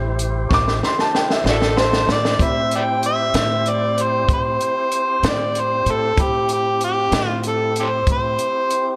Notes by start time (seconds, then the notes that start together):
Already playing: A1 C3 G3 C4 E4 G4 C5
0.19 closed hi-hat
0.49 A1 C#6, kick, snare
0.54 D6
0.68 snare
0.83 C6, snare
0.99 A5, snare
1.15 G5, snare
1.30 E5, snare
1.44 A1, snare
1.48 E4 F#4 A4 D5
1.62 snare
1.77 A4 C5, snare
1.93 snare
2.07 A2, snare
2.12 D5
2.25 snare
2.39 A2 C4 E4 G4 C5 B5, kick, closed hi-hat
2.43 E5
2.71 closed hi-hat
2.76 D5 E5 G5
3.03 E5, closed hi-hat
3.34 A2, snare, closed hi-hat
3.66 D5, closed hi-hat
3.98 closed hi-hat
4.02 C5
4.28 A2, kick, closed hi-hat
4.33 C5
4.61 closed hi-hat
4.92 closed hi-hat
5.23 A2, snare, closed hi-hat
5.28 D5
5.55 closed hi-hat
5.60 C5
5.86 A2, closed hi-hat
5.91 A4
6.16 A2 C4 E4 G4 B5, kick, closed hi-hat
6.21 G4
6.49 closed hi-hat
6.53 G4
6.81 G4, closed hi-hat
7.12 A2, snare, closed hi-hat
7.27 F4
7.43 closed hi-hat
7.48 A4
7.76 closed hi-hat
7.80 G4 A4 C5
8.07 A2, kick, closed hi-hat
8.13 C5
8.39 closed hi-hat
8.70 closed hi-hat